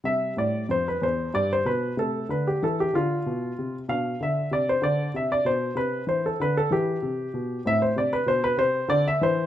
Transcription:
<<
  \new Staff \with { instrumentName = "Grand piano" } { \time 6/8 \key c \major \tempo 4. = 63 << { e''8 d''8 c''16 b'16 c''8 d''16 c''16 b'8 | a'8 b'16 g'16 a'16 g'16 f'4. | f''8 e''8 d''16 c''16 d''8 e''16 d''16 c''8 | b'8 c''16 a'16 b'16 a'16 g'4. |
\key a \minor e''16 c''16 d''16 b'16 c''16 b'16 c''8 d''16 e''16 c''8 | } \\ { g2. | a2. | d'2. | c'2. |
c'4. c'4. | } >> }
  \new Staff \with { instrumentName = "Grand piano" } { \clef bass \time 6/8 \key c \major c8 a,8 f,8 e,8 g,8 b,8 | c8 d8 e8 d8 b,8 c8 | b,8 d8 c8 d8 c8 b,8 | c8 e8 d8 e8 c8 b,8 |
\key a \minor a,8 c8 b,8 c8 d8 e8 | }
>>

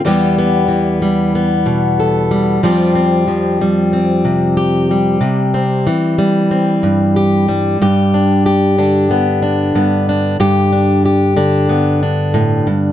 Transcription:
\new Staff \with { instrumentName = "Steel-string acoustic guitar" } { \time 4/4 \key g \mixolydian \tempo 4 = 93 << { <e g b g'>8 b4 g8 b4 a'8 g8 | <f g c' g'>8 c'4 g8 c'4 g'8 g8~ | g8 c'4 g8 c'4 g'8 g8 | g'8 d'8 g'8 d'8 b8 d'8 b8 d'8 |
g'8 d'8 g'8 d'8 b8 d'4. | } \\ { e,4 e4. b,4. | f,4 f4. c4. | c4 e4. g,4. | g,4. d4. g,4 |
g,4. d4. a,8 g,8 | } >> }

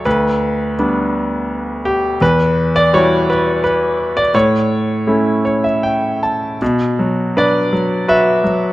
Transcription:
<<
  \new Staff \with { instrumentName = "Grand piano" } { \time 3/4 \key a \mixolydian \tempo 4 = 84 << { r2. | r2. | r4. cis''16 e''16 g''8 a''8 | \key b \minor r4 b'4 b'4 | } \\ { b'4 r4. g'8 | b'8. d''16 cis''8 b'8 b'8. d''16 | cis''2 r4 | r4 d''4 e''4 | } >> }
  \new Staff \with { instrumentName = "Grand piano" } { \clef bass \time 3/4 \key a \mixolydian d,4 <g b d'>2 | e,4 <g e' fis'>2 | a,4 <a cis' e'>2 | \key b \minor b,8 fis8 d'8 fis8 fis'8 fis8 | }
>>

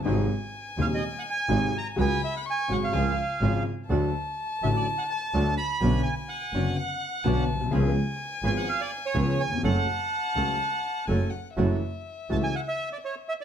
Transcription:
<<
  \new Staff \with { instrumentName = "Violin" } { \time 4/4 \key fis \minor \tempo 4 = 125 gis''1 | b''4 cis'''4 gis''4. r8 | a''1 | gis''2 fis''4 a''4 |
gis''1 | a''2. gis''8 fis''8 | e''1 | }
  \new Staff \with { instrumentName = "Bandoneon" } { \time 4/4 \key fis \minor r4. eis''16 dis''8 fis''16 gis''4 ais''8 | gis''8 e''16 fis''16 gis''8 fis''16 eis''4.~ eis''16 r8 | r4. e''16 d''8 fis''16 a''4 b''8~ | b''8 gis''8 fis''2~ fis''8 r8 |
r4. gis''16 fis''16 eis''16 d''8 cis''8. gis''8 | fis''2. r4 | r4. a''16 gis''16 fis''16 e''8 d''16 cis''8 e''16 d''16 | }
  \new Staff \with { instrumentName = "Bandoneon" } { \time 4/4 \key fis \minor <bis fis' gis'>8 r4 <bis fis' gis'>8 r4 <bis fis' gis'>8 r8 | <cis' fis' gis'>8 r4 <cis' fis' gis'>8 <cis' eis' gis'>8 r8 <cis' eis' gis'>8 r8 | <d' fis' a'>8 r4 <d' fis' a'>8 r4 <d' fis' a'>8 r8 | <cis' d' b'>8 r4 <cis' d' b'>8 r4 <cis' d' b'>8 r8 |
<cis' eis' b'>8 r4 <cis' eis' b'>8 r4 <cis' eis' b'>8 r8 | <cis' fis' a'>8 r4 <cis' fis' a'>8 r4 <cis' fis' a'>8 r8 | <e' fis' a'>8 r4 <e' fis' a'>8 r2 | }
  \new Staff \with { instrumentName = "Grand piano" } { \clef bass \time 4/4 \key fis \minor <gis,, gis, bis, fis gis dis'>8 r4 <dis,, dis, bis, fis gis dis'>8 r4 <gis,, gis, bis, fis gis dis'>8 r8 | <cis, cis fis gis fis'>8 r4 <gis,, gis, cis fis gis fis'>8 <cis, cis eis gis eis'>8 r8 <gis,, gis, cis eis gis eis'>8 r8 | <d, d fis a fis'>8 r4 <a,, a, d fis a fis'>8 r4 <d, d fis a fis'>8 r8 | <b,, b, d b cis' fis'>8 r4 <fis,, fis, d b cis' fis'>8 r4 <b,, b, d b cis' fis'>8 r32 ais,,32 b,,32 bis,,32 |
<cis, cis eis b cis' gis'>8 r4 <gis,, gis, eis b cis' gis'>8 r4 <cis, cis eis b cis' gis'>8 r32 dis,32 e,32 eis,32 | <fis, fis a cis' a'>8 r4 <cis, cis fis a cis' a'>8 r4 <fis, fis a cis' a'>8 r8 | <fis, e fis a cis' fis'>8 r4 <cis, cis e a cis' fis'>8 r2 | }
  \new Staff \with { instrumentName = "Double bass" } { \clef bass \time 4/4 \key fis \minor gis,,8 r4 dis,8 r4 gis,,8 r8 | cis,8 r4 gis,,8 cis,8 r8 gis,,8 r8 | d,8 r4 a,,8 r4 d,8 r8 | b,,8 r4 fis,,8 r4 b,,8 b,,8 |
cis,8 r4 gis,,8 r4 cis,8 r8 | fis,,8 r4 cis,8 r4 fis,,8 r8 | fis,,8 r4 cis,8 r2 | }
>>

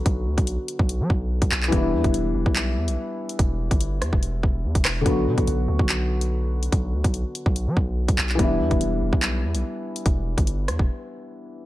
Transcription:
<<
  \new Staff \with { instrumentName = "Grand piano" } { \time 4/4 \key e \dorian \tempo 4 = 144 <d fis b d' fis'>1 | <e g b d' e'>1~ | <e g b d' e'>1 | <d fis b d' fis'>1~ |
<d fis b d' fis'>1 | <e g b d' e'>1~ | <e g b d' e'>1 | }
  \new Staff \with { instrumentName = "808-style bass" } { \clef bass \time 4/4 \key e \dorian b,,8 d,16 b,,8 r8 b,,8 fis16 b,,8. b,,16 b,,8 | e,,8 e,16 e,,16 e,,8 e,,16 b,,8. e,16 b,,16 r4 | e,,8. g,,8. e,16 e,,8. e,,8 e,16 e,,16 e,,8 | b,,8 b,16 b,,16 b,,8 d,16 b,,2~ b,,16 |
b,,8 d,16 b,,8 r8 b,,8 fis16 b,,8. b,,16 b,,8 | e,,8 e,16 e,,16 e,,8 e,,16 b,,8. e,16 b,,16 r4 | e,,8. g,,8. e,16 e,,16 r2 | }
  \new DrumStaff \with { instrumentName = "Drums" } \drummode { \time 4/4 <hh bd>8. <hh bd>16 hh8 hh16 bd16 hh8 bd8 r16 <hh bd>16 hc16 hc16 | <hh bd>8. <hh bd>16 hh8. bd16 <hc hh>8. hh16 r8. hh16 | <hh bd>8. <hh bd>16 hh8 <hh ss>16 bd16 hh8 bd8 r16 <hh bd>16 <hc hho ss>8 | <hh bd>8. <hh bd>16 hh8. bd16 <hc hh>8. hh16 r8. hh16 |
<hh bd>8. <hh bd>16 hh8 hh16 bd16 hh8 bd8 r16 <hh bd>16 hc16 hc16 | <hh bd>8. <hh bd>16 hh8. bd16 <hc hh>8. hh16 r8. hh16 | <hh bd>8. <hh bd>16 hh8 <hh ss>16 bd16 r4 r4 | }
>>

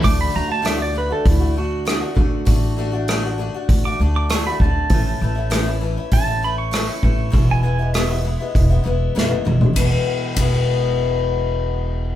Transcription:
<<
  \new Staff \with { instrumentName = "Pedal steel guitar" } { \time 4/4 \key e \mixolydian \tempo 4 = 99 d'''16 b''16 ais''16 a''16 e''16 d''16 b'16 a'16 e'8 fis'4.~ | fis'4. r8. d'''16 r16 d'''16 cis'''16 b''16 a''8~ | a''4. r8 a''8 b''16 cis'''4~ cis'''16~ | cis'''16 gis''16 gis''8 e''2 r4 |
r1 | }
  \new Staff \with { instrumentName = "Steel-string acoustic guitar" } { \time 4/4 \key e \mixolydian <d a d' fis'>8 <d a d' fis'>16 <a d' fis'>16 <d a d' fis'>16 <a d' fis'>16 <d a d' fis'>16 <a d' fis'>8 <a d' fis'>16 <d a d' fis'>8 <d a d' fis'>16 <a d' fis'>16 <d a d' fis'>8 | <d a d' fis'>8 <d a d' fis'>16 <a d' fis'>16 <d a d' fis'>16 <a d' fis'>16 <d a d' fis'>16 <a d' fis'>8 <a d' fis'>16 <d a d' fis'>8 <d a d' fis'>16 <a d' fis'>16 <d a d' fis'>8 | <a, e a cis' e'>8 <e a cis' e'>16 <a cis' e'>16 <a, e a cis' e'>16 <a cis' e'>16 <e a cis' e'>16 <a cis' e'>8 <a cis' e'>16 <e a cis' e'>8 <a, e a cis' e'>16 <a cis' e'>16 <e a cis' e'>8 | <e, b, e gis b e'>8 <e gis b e'>16 <e gis b e'>16 <e, b, e gis b e'>16 <e gis b e'>16 <e gis b e'>16 <e gis b e'>8 <e gis b e'>16 <e gis b e'>8 <e, b, e gis b e'>16 <e gis b e'>16 <e gis b e'>8 |
<e, b, e gis b e'>16 r8. <e, b, e gis b e'>2. | }
  \new Staff \with { instrumentName = "Upright bass" } { \clef bass \time 4/4 \key e \mixolydian d,8 d,4. d,4. d,8 | a,,2 d,8 d,4 d,8 | a,,8 a,,4. a,,4. a,,8 | e,,2 e,,8 e,,8 fis,,8 e,,8 |
e,,8 r8 e,,2. | }
  \new DrumStaff \with { instrumentName = "Drums" } \drummode { \time 4/4 <hho bd>4 <hho ss>4 <hho bd>4 <hho ss>8 bd8 | <hho bd>4 <hho ss>4 <hho bd>4 <hho ss>8 bd8 | <hho bd>4 <hho ss>4 <hho bd>4 <hho ss>8 bd8 | <hho bd>4 <hho ss>4 <hho bd>4 sn16 tommh16 toml16 tomfh16 |
<bd cymr>4 <bd cymr>4 r4 r4 | }
>>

